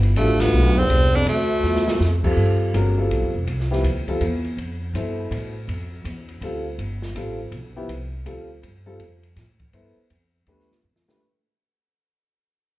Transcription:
Already playing: upright bass G1
0.03 ride
0.16 upright bass A1, bass clarinet D2, upright piano G3 D4 F4 A4, tenor saxophone A3, ride
0.40 bass clarinet D2, tenor saxophone B3, snare, ride
0.53 upright bass B1, hi-hat pedal
0.78 bass clarinet E2, tenor saxophone C4
0.89 upright bass C2, ride
1.15 bass clarinet F2, tenor saxophone D4
1.26 upright bass D2, bass clarinet D2, tenor saxophone A3, ride
1.63 upright bass E2, snare, hi-hat pedal
1.75 snare
1.88 snare
2.00 upright bass F2, snare
2.24 upright piano G3 C4 F4 A4, kick, crash
2.37 upright bass G2
2.74 upright bass G1, upright piano G#3 C#4 F#4 A#4, hi-hat pedal, ride
2.97 upright piano G3 C4 F4 A4
3.10 upright bass B1, ride
3.22 upright bass G1
3.34 upright bass F1
3.47 upright bass C2, ride
3.60 snare
3.71 upright piano F3 B3 E4 G4, snare
3.83 upright bass D2, hi-hat pedal, ride
4.08 upright piano G3 C4 F4 A4, kick, ride
4.21 upright bass E2, hi-hat pedal, ride
4.44 ride
4.57 upright bass F2, ride
4.94 upright bass G2, upright piano B2 E4 A4 C5, hi-hat pedal, ride
5.31 upright bass A2, ride
5.68 upright bass F2, ride
6.05 upright bass E2, hi-hat pedal, ride
6.29 ride
6.41 upright bass D2, upright piano G3 C4 F4 A4, ride
6.78 upright bass G1, ride
7.02 snare
7.15 upright bass A1, upright piano G3 C4 F4 A4, hi-hat pedal, ride
7.52 upright bass B1, ride
7.76 upright piano F3 B3 E4 G4
7.89 upright bass C2, ride
8.26 upright bass D2, upright piano G3 C4 F4 A4, hi-hat pedal, ride
8.63 upright bass G2, ride
8.86 upright piano G3 C4 F4 A4
9.00 upright bass F2, ride
9.23 ride
9.36 upright bass A2, snare, hi-hat pedal, ride
9.59 kick, ride
9.73 upright bass G2, upright piano B3 E4 A4 C5, ride
9.96 muted upright bass stroke
10.10 upright bass F2, ride
10.47 upright bass E2, upright piano A3 D4 G4 B4, hi-hat pedal, ride
10.60 snare
10.72 snare
10.84 upright bass F2
10.96 snare
11.07 upright piano A3 D4 G4 B4, muted upright bass stroke, snare

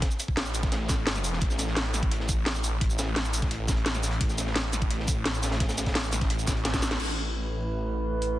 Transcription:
0.02 kick, snare, closed hi-hat
0.11 shaker
0.20 closed hi-hat, shaker
0.28 kick
0.37 detuned saw bass A1, snare, closed hi-hat
0.46 shaker
0.55 closed hi-hat, shaker
0.63 kick, snare, closed hi-hat
0.72 snare, closed hi-hat
0.89 kick, snare, closed hi-hat, shaker
1.07 snare, closed hi-hat
1.16 snare, closed hi-hat, shaker
1.24 closed hi-hat, open hi-hat, shaker
1.33 snare
1.41 detuned saw bass A1, kick, closed hi-hat
1.50 snare, shaker
1.58 snare, closed hi-hat, shaker
1.67 snare
1.76 snare, closed hi-hat
1.94 snare, closed hi-hat, shaker
2.03 kick, closed hi-hat
2.12 closed hi-hat
2.20 snare
2.28 kick, closed hi-hat, shaker
2.46 snare, closed hi-hat
2.55 closed hi-hat, shaker
2.64 open hi-hat, shaker
2.81 detuned saw bass A1, kick, closed hi-hat
2.90 shaker
2.99 snare, closed hi-hat, shaker
3.16 snare, closed hi-hat
3.25 shaker
3.33 closed hi-hat, shaker
3.42 kick, snare, closed hi-hat
3.51 closed hi-hat
3.68 kick, snare, closed hi-hat, shaker
3.77 closed hi-hat
3.86 snare, closed hi-hat
3.95 snare, closed hi-hat, shaker
4.03 snare, closed hi-hat, open hi-hat, shaker
4.11 closed hi-hat
4.21 detuned saw bass A1, kick, closed hi-hat
4.29 snare, shaker
4.38 snare, closed hi-hat, shaker
4.47 snare
4.56 snare, closed hi-hat
4.73 snare, closed hi-hat, shaker
4.82 kick, closed hi-hat
4.90 closed hi-hat
5.00 snare
5.08 kick, closed hi-hat, shaker
5.26 snare, closed hi-hat
5.34 closed hi-hat, shaker
5.43 snare, closed hi-hat, open hi-hat, shaker
5.51 snare, closed hi-hat
5.60 detuned saw bass A1, kick, snare, closed hi-hat
5.69 snare, closed hi-hat, shaker
5.78 snare, closed hi-hat, shaker
5.86 kick, snare, closed hi-hat
5.95 snare, closed hi-hat
6.04 shaker
6.11 snare, closed hi-hat, shaker
6.21 kick, snare, closed hi-hat
6.30 closed hi-hat
6.39 shaker
6.47 detuned saw bass A1, kick, snare, closed hi-hat, shaker
6.57 closed hi-hat
6.65 snare, closed hi-hat
6.74 kick, snare, closed hi-hat, shaker
6.82 snare, closed hi-hat, open hi-hat, shaker
6.91 snare, closed hi-hat
7.00 detuned saw bass A1, synth drone A3 E4 B4, crash
8.22 open hi-hat

